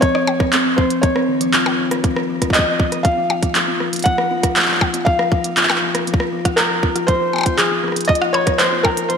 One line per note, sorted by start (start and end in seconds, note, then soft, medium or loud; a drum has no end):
0.01 0.14 F3 medium
0.01 0.73 C#5 loud
0.01 kick loud
0.01 closed hi-hat medium
0.15 0.24 F3 medium
0.15 cross-stick medium
0.27 0.37 F3 medium
0.27 percussion blips medium
0.40 0.46 F3 medium
0.40 kick loud
0.40 cross-stick medium
0.53 0.62 C4 medium
0.53 clap loud
0.53 closed hi-hat medium
0.65 0.77 F3 medium
0.76 0.87 F3 medium
0.76 1.03 C5 medium
0.76 kick loud
0.90 1.00 F3 medium
0.90 closed hi-hat medium
1.02 1.09 F3 medium
1.02 1.74 C#5 medium
1.02 kick loud
1.02 closed hi-hat soft
1.16 1.25 C4 medium
1.16 cross-stick medium
1.28 1.38 D#3 medium
1.41 1.50 F3 loud
1.41 closed hi-hat medium
1.53 1.63 F4 loud
1.53 clap loud
1.53 closed hi-hat medium
1.66 1.76 F3 medium
1.66 cross-stick medium
1.66 percussion blips medium
1.79 1.88 F3 medium
1.91 2.01 F4 medium
1.91 cross-stick medium
1.91 closed hi-hat medium
2.04 2.13 F3 medium
2.04 kick loud
2.04 closed hi-hat soft
2.16 2.26 F3 medium
2.16 cross-stick medium
2.29 2.35 F3 medium
2.42 2.51 F4 loud
2.42 kick soft
2.42 cross-stick medium
2.42 closed hi-hat medium
2.50 3.06 D#5 medium
2.50 kick medium
2.54 2.66 F3 medium
2.54 clap loud
2.54 closed hi-hat medium
2.59 kick medium
2.67 2.76 F3 medium
2.80 2.89 F3 medium
2.80 kick loud
2.92 2.98 F3 medium
2.92 cross-stick soft
2.92 closed hi-hat medium
3.03 3.14 F4 loud
3.03 4.01 F5 loud
3.03 kick loud
3.03 closed hi-hat medium
3.17 3.29 F3 medium
3.30 3.39 F3 medium
3.30 percussion blips medium
3.43 3.52 F3 medium
3.43 kick medium
3.43 closed hi-hat medium
3.55 3.61 F3 medium
3.55 clap loud
3.55 closed hi-hat medium
3.68 3.77 F4 loud
3.80 3.92 F3 medium
3.80 cross-stick soft
3.93 4.02 F3 medium
3.93 closed hi-hat medium
3.96 closed hi-hat soft
3.99 closed hi-hat soft
4.03 4.15 F3 medium
4.03 4.76 F#5 loud
4.03 kick loud
4.03 closed hi-hat soft
4.06 closed hi-hat medium
4.18 4.24 F3 medium
4.18 cross-stick medium
4.31 4.40 F4 loud
4.43 4.55 F3 medium
4.43 kick loud
4.43 cross-stick medium
4.43 closed hi-hat medium
4.56 4.65 F3 medium
4.56 clap loud
4.56 closed hi-hat medium
4.59 clap medium
4.62 clap medium
4.65 4.78 F3 medium
4.65 clap medium
4.69 clap soft
4.72 clap soft
4.75 clap soft
4.78 4.87 F3 medium
4.78 kick loud
4.78 clap soft
4.78 percussion blips loud
4.94 5.03 F4 loud
4.94 closed hi-hat medium
5.05 5.18 F3 medium
5.05 5.53 F5 loud
5.05 kick loud
5.19 5.28 F3 medium
5.19 cross-stick medium
5.32 5.41 F3 medium
5.32 kick loud
5.44 5.50 F3 medium
5.44 closed hi-hat medium
5.57 5.66 F4 loud
5.57 clap loud
5.57 closed hi-hat soft
5.63 clap medium
5.69 5.81 F3 medium
5.69 cross-stick medium
5.69 clap medium
5.69 percussion blips medium
5.76 clap medium
5.82 5.92 F3 medium
5.95 6.04 F3 medium
5.95 cross-stick medium
5.95 closed hi-hat medium
6.07 6.13 F3 medium
6.07 closed hi-hat medium
6.14 kick loud
6.20 6.29 F4 loud
6.20 cross-stick medium
6.33 6.44 F3 medium
6.45 6.55 F3 medium
6.45 kick loud
6.45 cross-stick medium
6.45 closed hi-hat medium
6.56 6.67 F3 medium
6.56 7.04 A#4 medium
6.56 clap loud
6.56 closed hi-hat medium
6.70 6.76 F3 medium
6.83 6.92 F4 loud
6.83 kick medium
6.96 7.07 F3 medium
6.96 cross-stick medium
6.96 closed hi-hat medium
7.07 7.18 F3 medium
7.07 7.54 C5 loud
7.07 kick loud
7.07 closed hi-hat medium
7.21 7.30 F3 medium
7.33 7.39 F3 medium
7.33 percussion blips soft
7.36 percussion blips soft
7.38 percussion blips medium
7.41 percussion blips medium
7.43 7.55 F4 loud
7.43 kick medium
7.43 closed hi-hat medium
7.43 percussion blips medium
7.57 7.70 F3 medium
7.57 8.10 G#4 medium
7.57 clap loud
7.57 closed hi-hat medium
7.71 7.81 F3 medium
7.84 7.93 F3 medium
7.84 cross-stick soft
7.88 cross-stick soft
7.92 cross-stick soft
7.96 8.02 F3 medium
7.96 closed hi-hat medium
8.01 closed hi-hat medium
8.05 8.13 D#5 loud
8.05 closed hi-hat soft
8.09 8.18 F4 loud
8.09 kick loud
8.15 closed hi-hat medium
8.22 8.33 F3 medium
8.22 cross-stick medium
8.33 8.44 F3 medium
8.33 8.60 C#5 loud
8.33 percussion blips loud
8.47 8.56 F3 medium
8.47 kick loud
8.47 cross-stick medium
8.47 closed hi-hat medium
8.58 8.65 F3 medium
8.58 8.85 C5 loud
8.58 clap loud
8.58 closed hi-hat medium
8.72 8.81 F4 loud
8.83 8.96 F3 medium
8.83 9.07 A#4 medium
8.83 kick loud
8.83 percussion blips loud
8.97 9.07 F3 medium
8.97 closed hi-hat medium
9.09 9.17 F3 medium
9.09 9.17 C5 medium
9.09 closed hi-hat medium